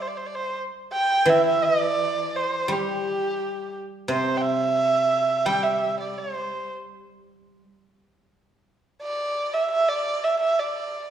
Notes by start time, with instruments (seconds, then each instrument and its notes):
Already playing: guzheng G3
0.02 erhu C5
0.07 erhu D5
0.17 erhu C5
0.26 erhu D5
0.35 erhu C5
0.93 erhu G5
1.25 guzheng E3, erhu E5
1.47 erhu E5
1.64 erhu D5
2.36 erhu C5
2.68 guzheng G3
2.72 erhu G4
4.08 guzheng C3, erhu C5
4.37 erhu G5
4.42 erhu E5
5.45 guzheng G3, erhu G5
5.63 erhu E5
6.00 erhu D5
6.18 erhu C5
9.02 erhu D5
9.54 erhu E5
9.71 erhu E5
9.88 erhu D5
10.24 erhu E5
10.40 erhu E5
10.59 erhu D5